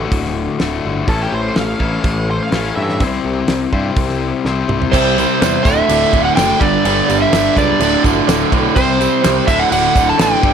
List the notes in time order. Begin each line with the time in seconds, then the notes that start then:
Already playing: D2 A2 D3 A3 F#4
0.12 D1, kick, open hi-hat
0.25 snare
0.59 D1 D2 A2 D3 A3 F#4, snare, open hi-hat
0.85 G1
1.07 A1 A2 E3 A3 C#4 E4 A4, kick, open hi-hat
1.23 G4
1.32 A1 C5
1.56 A1 F5, snare, open hi-hat
1.80 A1 A2 E3 A3 C#4 E4 A4, kick
2.04 A1, kick, open hi-hat
2.31 C5
2.43 F5
2.51 A1 A2 E3 A3 C#4 E4 A4, snare, open hi-hat
2.76 G2 E5
2.89 snare
3.00 C2 C3 G3 C4 E4 G4, kick, open hi-hat
3.04 C5
3.25 C2
3.48 C2, snare, open hi-hat
3.73 G2 C3 G3 C4 E4 G4 C5, kick
3.96 C2, kick, open hi-hat
4.09 snare
4.45 C2 C3 G3 C4 E4 G4 C5, snare
4.68 C2, mid tom
4.82 floor tom
4.91 C2 C3 G3 C4 E4 G4 C5 E5, kick, crash, tambourine
5.18 C3 G3 C4, tambourine, crash
5.42 E2 C3 G3 C4 E4 G4 C5 E5, snare, tambourine, crash
5.63 D1 D2 A2 D3 A3 D4 F#4 A4 D5 E5, kick, tambourine, crash
5.89 D1 D2 A2 D3, tambourine, crash
6.13 D1 D2 A2 D3, kick, crash
6.25 F#5
6.36 F#1 D2 A2 D3 D4 F#4 A4 D5 G5, snare, tambourine, crash
6.59 G1 G2 D3 G3 D4 G4 A4 B4 D5, kick, crash
6.85 G1 G2 D3 G3, tambourine, crash
7.08 G1 G2 D3 G3, tambourine, crash
7.22 E5
7.32 G1 G2 D3 G3 D4 G4 A4 B4, snare, tambourine, crash
7.56 C#2 G2 D3 G3 D5, kick, tambourine, crash
7.79 D1 D2 A2 D3 A3 D4 F#4 A4 D5, tambourine, crash
8.04 G1 D2 A2 D3, kick, tambourine, crash
8.26 D1 D2 A2 D3 D4 F#4 A4 D5, snare, tambourine, crash
8.51 B1 D2 A2 D3, kick, crash
8.74 C2 C3 G3 C4 E4 G4 C5, kick, tambourine, crash
9.00 C3 G3 C4, tambourine, crash
9.21 C2 C3 G3 C4 E4 G4 C5, snare, tambourine, crash
9.45 D1 D2 A2 D3 A3 D4 F#4 A4 D5 E5, kick, crash
9.49 tambourine
9.60 F#5
9.71 D1 D2 A2 D3 F#5, tambourine, crash
9.94 D1 D2 A2 D3, kick, tambourine, crash
10.09 A5
10.16 A1 D2 A2 D3 D4 F#4 A4 D5, snare, crash
10.21 G5, tambourine
10.39 G2 D3 B3 D4 G4 A4 B4
10.43 G1 G3, kick, crash